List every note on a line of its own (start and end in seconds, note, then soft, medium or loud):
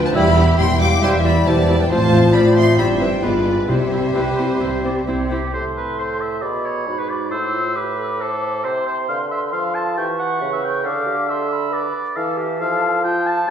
0.00 0.10 D2 medium
0.00 0.13 F3 medium
0.00 0.16 F4 medium
0.00 0.15 B4 medium
0.06 0.16 C5 medium
0.06 0.10 A5 medium
0.15 0.54 E1 medium
0.15 0.54 E2 medium
0.15 0.23 G3 medium
0.15 0.31 G3 medium
0.15 1.91 G3 medium
0.15 0.23 E4 medium
0.15 0.30 E4 medium
0.15 1.87 E4 medium
0.15 0.58 G4 medium
0.15 0.30 E5 medium
0.15 0.59 E5 medium
0.15 0.58 B5 medium
0.36 0.45 G3 medium
0.36 0.44 E4 medium
0.58 0.97 E1 medium
0.58 0.97 E2 medium
0.58 0.66 G3 medium
0.58 0.66 E4 medium
0.58 0.66 E5 medium
0.58 1.03 G5 medium
0.58 0.80 C6 medium
0.80 0.88 G3 soft
0.80 0.88 E4 medium
0.80 1.02 F5 medium
0.80 1.03 D6 medium
1.02 1.41 E1 medium
1.02 1.41 E2 medium
1.02 1.10 G3 medium
1.02 1.18 G3 medium
1.02 1.10 E4 medium
1.02 1.18 E4 medium
1.02 1.18 C5 medium
1.02 1.46 E5 medium
1.02 1.27 E5 medium
1.02 1.11 C6 medium
1.24 1.32 G3 medium
1.24 1.32 E4 medium
1.24 1.48 D5 medium
1.24 1.46 B5 medium
1.46 1.85 E1 medium
1.46 1.85 E2 medium
1.46 1.55 G3 medium
1.46 1.54 E4 medium
1.46 1.79 C5 medium
1.46 1.90 D5 medium
1.46 1.79 A5 medium
1.69 1.77 G3 soft
1.69 1.77 E4 soft
1.79 1.84 B4 medium
1.79 1.91 G5 medium
1.89 2.29 A1 medium
1.89 2.29 A2 medium
1.89 2.79 F3 medium
1.89 3.08 C4 medium
1.89 1.98 C4 medium
1.89 2.76 F4 medium
1.89 1.98 F4 medium
1.89 2.80 F4 medium
1.89 2.74 C5 medium
1.89 2.36 C5 medium
1.89 2.33 C5 medium
1.89 2.34 A5 medium
2.13 2.21 C4 medium
2.13 2.21 F4 medium
2.34 2.73 A1 medium
2.34 2.73 A2 medium
2.34 2.42 C4 soft
2.34 2.42 F4 soft
2.34 2.78 D5 medium
2.34 2.56 D5 medium
2.34 2.56 B5 medium
2.56 2.65 C4 soft
2.56 2.64 F4 soft
2.56 2.77 E5 medium
2.56 2.78 C6 medium
2.78 3.17 G1 medium
2.78 3.18 G2 medium
2.78 3.24 G3 medium
2.78 2.86 C4 soft
2.78 2.86 E4 soft
2.78 3.11 E4 medium
2.78 3.22 E4 soft
2.78 3.24 C5 medium
2.78 3.00 D5 medium
2.78 3.22 E5 medium
2.78 2.86 B5 medium
3.00 3.09 C4 soft
3.00 3.09 E4 soft
3.00 3.07 B4 medium
3.00 3.23 G5 medium
3.23 3.64 G1 medium
3.23 3.64 G2 medium
3.23 3.68 G#3 soft
3.23 3.31 B3 soft
3.23 3.69 B3 soft
3.23 3.31 F4 soft
3.23 3.70 F4 soft
3.23 3.72 F4 medium
3.23 3.69 G#4 soft
3.23 3.71 B4 soft
3.23 3.69 B4 medium
3.23 3.69 D5 medium
3.45 3.53 B3 soft
3.45 3.53 F4 soft
3.68 4.10 C2 medium
3.68 4.10 C3 medium
3.68 4.35 C3 medium
3.68 5.27 G3 soft
3.68 3.77 C4 soft
3.68 5.31 C4 soft
3.68 3.76 E4 soft
3.68 5.31 E4 soft
3.68 5.31 G4 medium
3.68 5.08 G4 medium
3.68 4.11 C5 soft
3.68 5.31 C5 medium
3.68 5.05 E5 medium
3.92 4.00 C4 soft
3.92 4.00 E4 soft
4.15 4.57 C2 soft
4.15 4.56 C3 soft
4.15 4.23 C4 soft
4.15 4.23 E4 soft
4.15 4.64 B4 medium
4.38 4.46 C4 soft
4.38 4.47 E4 soft
4.61 5.03 C2 soft
4.61 5.03 C3 soft
4.61 4.70 C4 soft
4.61 4.69 E4 soft
4.61 4.85 C5 soft
4.85 4.93 C4 soft
4.85 4.93 E4 soft
4.85 4.96 D5 soft
5.07 5.48 C2 soft
5.07 5.48 C3 medium
5.07 5.15 C4 soft
5.07 5.15 E4 soft
5.07 5.30 C5 soft
5.30 5.38 C4 soft
5.30 5.38 E4 soft
5.30 5.52 G4 medium
5.53 6.44 A2 soft
5.53 6.44 A4 soft
5.53 5.64 C5 medium
5.53 6.40 C6 soft
5.77 5.98 B4 medium
5.98 6.22 C5 medium
6.21 6.43 E5 medium
6.42 6.89 B2 soft
6.42 6.87 G#4 soft
6.42 6.67 D5 medium
6.42 7.33 B5 soft
6.65 7.00 C#5 medium
6.87 7.30 G#2 soft
6.87 7.32 F#4 soft
6.98 7.11 B4 soft
7.09 7.30 D5 medium
7.31 8.66 A2 soft
7.31 7.55 E4 soft
7.31 7.78 C5 medium
7.31 7.77 E6 soft
7.54 7.78 F4 soft
7.76 8.01 G4 soft
7.76 8.23 B4 medium
7.76 8.66 D6 soft
7.99 8.22 A4 soft
8.20 8.66 A4 medium
8.20 9.11 C5 soft
8.64 9.08 C3 soft
8.64 8.86 C5 medium
8.64 9.97 C6 soft
8.87 8.97 C5 medium
9.08 9.54 D3 soft
9.08 9.54 B4 soft
9.08 9.19 F5 medium
9.31 9.41 E5 medium
9.52 9.99 F3 soft
9.52 9.99 A4 soft
9.52 9.76 F5 medium
9.74 9.97 A5 medium
9.97 10.41 E3 medium
9.97 10.41 G4 soft
9.97 10.07 G5 medium
9.97 10.83 C#6 soft
10.19 10.51 F#5 medium
10.41 10.84 C#3 soft
10.41 10.86 B4 soft
10.53 10.66 E5 medium
10.64 10.87 G5 medium
10.84 11.86 D3 medium
10.84 11.05 A4 medium
10.84 11.31 F5 medium
10.84 11.32 D6 soft
11.06 11.30 G4 medium
11.29 11.73 A4 soft
11.29 11.75 E5 medium
11.29 11.54 C6 soft
11.53 11.94 B5 soft
11.71 12.02 B4 soft
11.71 12.18 D5 medium
12.15 12.62 E3 medium
12.15 12.39 A4 medium
12.15 12.38 F5 medium
12.15 13.00 A5 soft
12.37 12.62 G4 medium
12.61 13.47 F3 medium
12.61 13.04 A4 medium
12.61 13.01 F5 medium
13.03 13.47 F4 medium
13.03 13.28 G5 medium
13.03 13.50 A5 medium
13.27 13.50 A5 medium